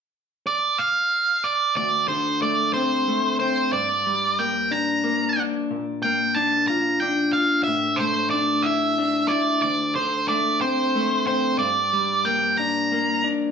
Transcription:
0.47 lead electric guitar D5
0.78 lead electric guitar F5
1.44 lead electric guitar D5
1.77 clean electric guitar D2, lead electric guitar D5
2.08 clean electric guitar D3, lead electric guitar C5
2.42 clean electric guitar A3, lead electric guitar D5
2.74 clean electric guitar C4, lead electric guitar C5
3.08 clean electric guitar A3
3.40 clean electric guitar C4, lead electric guitar C5
3.73 clean electric guitar G2, lead electric guitar D5
4.06 clean electric guitar G3
4.39 clean electric guitar A#3, lead electric guitar G5
4.71 clean electric guitar D4, lead electric guitar A#5
5.04 clean electric guitar A#3
5.37 clean electric guitar D4
5.71 clean electric guitar A#2
6.03 clean electric guitar A#3, lead electric guitar G5
6.35 clean electric guitar D4, lead electric guitar A5
6.68 clean electric guitar F4, lead electric guitar A#5
7.00 clean electric guitar D4, lead electric guitar G5
7.33 clean electric guitar F4, lead electric guitar F5
7.64 clean electric guitar A2, lead electric guitar E5
7.96 lead electric guitar C5
8.00 clean electric guitar A3
8.30 clean electric guitar D4, lead electric guitar D5
8.63 clean electric guitar E4, lead electric guitar E5
8.98 clean electric guitar D4
9.28 clean electric guitar E4, lead electric guitar D5
9.62 clean electric guitar D2, lead electric guitar D5
9.96 clean electric guitar D3, lead electric guitar C5
10.28 clean electric guitar A3, lead electric guitar D5
10.61 clean electric guitar C4, lead electric guitar C5
10.95 clean electric guitar A3
11.27 clean electric guitar C4, lead electric guitar C5
11.59 clean electric guitar G2, lead electric guitar D5
11.93 clean electric guitar G3
12.25 clean electric guitar A#3, lead electric guitar G5
12.57 clean electric guitar D4, lead electric guitar A#5
12.92 clean electric guitar A#3
13.24 clean electric guitar D4

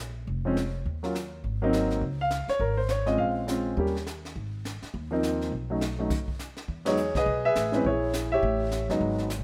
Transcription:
Already playing: upright bass A#1
0.27 upright bass F1, brush sweep, kick
0.45 grand piano F3 G#3 C4 C#4
0.57 snare, hi-hat pedal
0.86 upright bass D#2, brush sweep, kick
1.03 grand piano F#3 A#3 C#4 F4, snare
1.15 snare, hi-hat pedal
1.44 upright bass G#1, brush sweep, kick
1.62 grand piano F#3 A#3 C4 D#4
1.73 snare, hi-hat pedal
1.90 snare
2.01 upright bass C#2, brush sweep, kick
2.21 grand piano F5
2.31 snare, hi-hat pedal
2.48 grand piano C#5, muted upright bass stroke, snare
2.60 upright bass G#1, grand piano A#4, brush sweep, kick
2.77 grand piano C5
2.89 grand piano C#5, snare, hi-hat pedal
3.06 grand piano G#3 C4 C#4 F4 D#5, snare
3.18 upright bass A#1, grand piano F5, brush sweep, kick
3.47 grand piano G#3 C4 C#4 F4, snare, hi-hat pedal
3.77 upright bass D#2, grand piano G3 A#3 C#4 G4, brush sweep, kick
3.87 snare
3.96 snare
4.07 snare, hi-hat pedal
4.25 snare
4.36 upright bass G#1, brush sweep, kick
4.65 snare, hi-hat pedal
4.82 muted upright bass stroke, snare
4.94 upright bass D#2, brush sweep, kick
5.11 grand piano F3 A#3 C4 D#4
5.23 snare, hi-hat pedal
5.41 snare
5.52 upright bass B1, brush sweep, kick
5.70 grand piano F#3 A3 C#4 D#4
5.81 snare, hi-hat pedal
5.99 grand piano F#3 A3 C#4 D#4
6.10 brush sweep, kick, snare, crash
6.28 kick
6.39 snare, hi-hat pedal
6.57 snare
6.68 upright bass E2, brush sweep, kick
6.85 grand piano F#3 G#3 B3 D#4 G#4 C#5, snare, ride
6.97 hi-hat pedal
7.15 upright bass B2, grand piano G#4 B4 D#5, kick, snare
7.26 upright bass B1, brush sweep, kick
7.45 grand piano G#4 B4 E5
7.55 upright bass A1, snare, hi-hat pedal
7.72 grand piano E3 G#3 C4 C#4 B4, snare
7.84 upright bass A#1, grand piano E4 G#4 C#5, brush sweep, kick
8.13 snare, hi-hat pedal
8.32 grand piano G4 C#5 E5
8.43 upright bass A1, brush sweep, kick
8.72 snare, hi-hat pedal
8.89 upright bass G1, grand piano F#3 G#3 B3 D#4, snare
9.00 upright bass G#1, brush sweep, kick
9.18 snare
9.30 snare, hi-hat pedal
9.39 upright bass B1

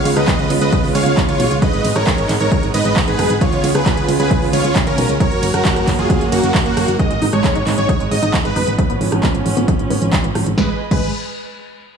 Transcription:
Already playing: string section C#3 G#3 B3 F4
0.05 fm bass C#2, open hi-hat, ride
0.17 fm bass C#2, supersaw synth B4 D#5, cross-stick, closed hi-hat
0.28 kick, clap, closed hi-hat
0.39 fm bass C#2, closed hi-hat
0.50 fm bass C#2, open hi-hat, ride
0.61 fm bass C#2, supersaw synth B4 D#5, closed hi-hat
0.73 kick, closed hi-hat
0.84 fm bass C#2, open hi-hat
0.95 fm bass C#2, supersaw synth C#5 F5, open hi-hat, ride
1.06 fm bass C#2, closed hi-hat
1.17 kick, clap, closed hi-hat
1.29 fm bass C#2, supersaw synth F4 C#5, closed hi-hat
1.40 fm bass B1, open hi-hat, ride
1.51 fm bass C#2, closed hi-hat
1.62 string section B3 D#4, supersaw synth B4 D#5, kick, closed hi-hat
1.73 fm bass G#1, closed hi-hat
1.85 fm bass G#1, open hi-hat, ride
1.96 fm bass G#1, supersaw synth A#4 C#5, cross-stick, closed hi-hat
2.07 kick, clap, closed hi-hat
2.18 fm bass G#1, closed hi-hat
2.29 fm bass G#1, clap, open hi-hat, ride
2.40 fm bass G#1, supersaw synth A#4 C#5, closed hi-hat
2.52 kick, closed hi-hat
2.63 fm bass G#1, closed hi-hat
2.74 fm bass G#1, supersaw synth B4 D#5, open hi-hat, ride
2.85 fm bass G#1, closed hi-hat
2.96 kick, clap, open hi-hat
3.08 fm bass G#1, supersaw synth G#4 B4, closed hi-hat
3.19 fm bass F#1, cross-stick, open hi-hat, ride
3.30 fm bass G#1, closed hi-hat
3.41 string section C#3 F4, supersaw synth F4 C#5, kick, closed hi-hat
3.53 fm bass C#2, closed hi-hat
3.64 fm bass C#2, open hi-hat, ride
3.75 fm bass C#2, supersaw synth G#4 B4, cross-stick, closed hi-hat
3.86 kick, clap, closed hi-hat
3.97 fm bass C#2, closed hi-hat
4.08 fm bass C#2, open hi-hat, ride
4.20 fm bass C#2, supersaw synth G#4 B4, closed hi-hat
4.31 kick, closed hi-hat
4.42 fm bass C#2, open hi-hat
4.53 fm bass C#2, supersaw synth F4 C#5, open hi-hat, ride
4.64 fm bass C#2, closed hi-hat
4.76 kick, clap, closed hi-hat
4.87 fm bass C#2, supersaw synth C#4 A#4, closed hi-hat
4.98 fm bass B1, open hi-hat, ride
5.09 fm bass C#2, closed hi-hat
5.20 string section A#3 C#4 F#4, supersaw synth A#4 C#5, kick, closed hi-hat
5.32 fm bass F#1, closed hi-hat
5.43 fm bass F#1, open hi-hat, ride
5.54 fm bass F#1, supersaw synth F#4 A#4, cross-stick, closed hi-hat
5.65 kick, clap, closed hi-hat
5.76 fm bass F#1, cross-stick, closed hi-hat
5.88 fm bass F#1, kick, clap, open hi-hat, ride
5.99 fm bass F#1, supersaw synth F4 G#4, closed hi-hat
6.10 kick, closed hi-hat
6.21 fm bass F#1, closed hi-hat
6.32 fm bass F#1, supersaw synth A#3 F#4, open hi-hat, ride
6.43 fm bass F#1, closed hi-hat
6.55 kick, clap, open hi-hat
6.66 fm bass F#1, supersaw synth A#3 F#4, closed hi-hat
6.77 fm bass F#1, cross-stick, open hi-hat, ride
6.88 fm bass F#1, closed hi-hat
6.99 string section G#3 B3 D#4, synth arpeggio sound G#3, supersaw synth D#5, kick, closed hi-hat
7.11 fm bass G#1, synth arpeggio sound G#3, closed hi-hat
7.22 fm bass G#1, synth arpeggio sound D#4, open hi-hat
7.33 fm bass G#1, synth arpeggio sound G#3, supersaw synth C#5, cross-stick, closed hi-hat
7.44 synth arpeggio sound G#3, kick, clap, closed hi-hat
7.55 fm bass G#1, synth arpeggio sound D#4, closed hi-hat
7.67 fm bass G#1, synth arpeggio sound G#3, clap, open hi-hat
7.78 fm bass G#1, synth arpeggio sound G#3, supersaw synth C#5, closed hi-hat
7.89 synth arpeggio sound D#4, kick, closed hi-hat
8.00 fm bass G#1, synth arpeggio sound G#3, closed hi-hat
8.11 fm bass G#1, synth arpeggio sound G#3, supersaw synth D#5, open hi-hat
8.23 fm bass G#1, synth arpeggio sound D#4, closed hi-hat
8.34 synth arpeggio sound G#3, kick, clap, closed hi-hat
8.45 fm bass G#1, synth arpeggio sound G#3, supersaw synth B4, closed hi-hat
8.56 fm bass F#1, synth arpeggio sound D#4, open hi-hat
8.67 fm bass G#1, synth arpeggio sound G#3, closed hi-hat
8.78 string section F3 C#4, synth arpeggio sound F3, kick, closed hi-hat
8.90 fm bass G#1, synth arpeggio sound B3, closed hi-hat
9.01 fm bass G#1, synth arpeggio sound F3, open hi-hat
9.12 fm bass G#1, synth arpeggio sound F3, cross-stick, closed hi-hat
9.23 synth arpeggio sound B3, kick, clap, closed hi-hat
9.34 fm bass G#1, synth arpeggio sound F3, closed hi-hat
9.46 fm bass G#1, synth arpeggio sound F3, open hi-hat
9.57 fm bass G#1, synth arpeggio sound B3, closed hi-hat
9.68 synth arpeggio sound F3, kick, closed hi-hat
9.79 fm bass G#1, synth arpeggio sound F3, closed hi-hat
9.90 fm bass G#1, synth arpeggio sound B3, open hi-hat
10.02 fm bass G#1, synth arpeggio sound F3, closed hi-hat
10.13 synth arpeggio sound F3, kick, clap, closed hi-hat
10.24 fm bass G#1, synth arpeggio sound B3, closed hi-hat
10.35 fm bass G#1, synth arpeggio sound F3, cross-stick, open hi-hat
10.46 fm bass G#1, synth arpeggio sound F3, closed hi-hat
10.58 fm bass G#1, synth arpeggio sound G#3, string section G#3 G#4 B4 D#5, supersaw synth B4, kick, snare
10.91 fm bass G#1, synth arpeggio sound G#3, supersaw synth B4, kick, crash

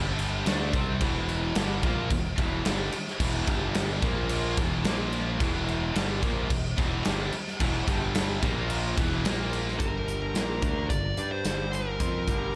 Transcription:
Already playing: fingered electric bass G1, overdriven electric guitar G2 D3 G3
0.19 crash
0.46 fingered electric bass D2, overdriven electric guitar D3 A3 D4, snare, crash
0.73 fingered electric bass C2, overdriven electric guitar C3 G3 C4, kick, crash
1.01 fingered electric bass E1, overdriven electric guitar E2 B2 E3, kick, crash
1.29 crash
1.55 fingered electric bass G1, overdriven electric guitar G2 D3 G3, snare, crash
1.83 fingered electric bass A#1, overdriven electric guitar A#2 F3 A#3, kick, crash
2.10 fingered electric bass E1, overdriven electric guitar E2 B2, kick, crash
2.38 fingered electric bass E1, overdriven electric guitar E2 B2 E3, kick, crash
2.65 fingered electric bass G1, overdriven electric guitar G2 D3 G3, snare, crash
2.92 muted distorted electric guitar stroke, muted overdriven electric guitar stroke, muted fingered electric bass stroke, crash
3.07 snare
3.20 fingered electric bass E1, overdriven electric guitar E2 B2 E3, kick, crash
3.47 fingered electric bass G1, overdriven electric guitar G2 D3 G3, kick, crash
3.75 snare, crash
4.02 fingered electric bass A#1, overdriven electric guitar A#2 F3 A#3, kick, crash
4.29 crash
4.57 fingered electric bass E1, overdriven electric guitar E2 B2 E3, kick, crash
4.84 fingered electric bass A#1, overdriven electric guitar A#2 F3 A#3, snare, crash
5.13 crash
5.40 fingered electric bass E1, overdriven electric guitar E2 B2 E3, kick, crash
5.68 crash
5.95 fingered electric bass G1, overdriven electric guitar G2 D3 G3, snare, crash
6.22 fingered electric bass A#1, overdriven electric guitar A#2 F3 A#3, kick, crash
6.49 fingered electric bass E1, overdriven electric guitar E2 B2, kick, crash
6.77 fingered electric bass E1, overdriven electric guitar E2 B2 E3, kick, crash
7.04 fingered electric bass G1, overdriven electric guitar G2 D3 G3, snare, crash
7.32 muted distorted electric guitar stroke, muted overdriven electric guitar stroke, muted fingered electric bass stroke, crash
7.47 snare
7.60 fingered electric bass E1, overdriven electric guitar E2 B2 E3, kick, crash
7.88 fingered electric bass G1, overdriven electric guitar G2 D3 G3, kick, crash
8.15 snare, crash
8.43 fingered electric bass A#1, overdriven electric guitar A#2 F3 A#3, kick, crash
8.70 crash
8.96 fingered electric bass E1, overdriven electric guitar E2 B2 E3, kick, crash
9.24 fingered electric bass A#1, overdriven electric guitar A#2 F3 A#3, snare, crash
9.53 crash
9.68 snare
9.78 fingered electric bass G1, overdriven electric guitar G2 D3 G3, lead electric guitar A#4, kick, closed hi-hat
10.08 closed hi-hat
10.34 fingered electric bass A#1, overdriven electric guitar A#2 F3 A#3, snare, closed hi-hat
10.62 fingered electric bass D2, overdriven electric guitar D3 A3 D4, kick, closed hi-hat
10.89 fingered electric bass G1, overdriven electric guitar G2 D3, lead electric guitar D5, kick, closed hi-hat
11.17 fingered electric bass G2, overdriven electric guitar G3 D4 G4, closed hi-hat
11.32 lead electric guitar C5
11.45 fingered electric bass G1, overdriven electric guitar G2 D3 G3, snare, closed hi-hat
11.73 lead electric guitar A#4, closed hi-hat
12.00 fingered electric bass F2, overdriven electric guitar F3 C4 F4, kick, closed hi-hat
12.27 fingered electric bass G1, overdriven electric guitar G2 D3 G3, kick, closed hi-hat

